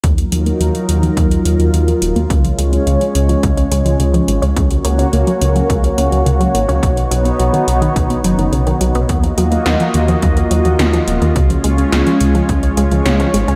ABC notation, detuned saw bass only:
X:1
M:4/4
L:1/16
Q:1/4=106
K:Ebm
V:1 name="Detuned saw bass" clef=bass
E,, z E,, z E,, z E,, z E,, z E,, E,, E,, z E,,, E,, | D,, z D,, z D,, z D,, z D,, z D,, D,, D,, z A,,, D,, | D,, z D,, z D,, z D,, z D,, z D,, D,, D,, z A,,, D,, | =B,,, z B,,, z B,,, z B,,, z B,,, z ^F,,, F,,, B,,, z B,,, B,,, |
E,, z E,, z E,, z E,, z E,, z E,, E,, E,, z E,,, E,, | D,, z D,, z D,, z D,, z D,, z D,, D,, D,, z A,,, D,, |]